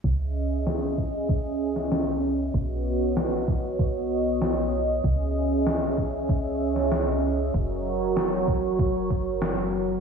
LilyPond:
<<
  \new Staff \with { instrumentName = "Analog synth pad" } { \time 4/4 \key cis \dorian \tempo 4 = 96 <cis' gis' dis'' e''>1 | <b fis' cis'' dis''>1 | <cis' gis' e''>1 | <fis fis' ais' cis''>1 | }
  \new Staff \with { instrumentName = "Analog synth bass" } { \clef bass \time 4/4 \key cis \dorian cis,1 | b,,1 | cis,1 | fis,,1 | }
  \new DrumStaff \with { instrumentName = "Drums" } \drummode { \time 4/4 bd4 sn8 bd8 bd8. sn16 sn4 | bd4 sn8 bd8 bd4 sn4 | bd4 sn8 bd8 bd8. sn16 sn4 | bd4 sn8 bd8 bd8 bd8 sn4 | }
>>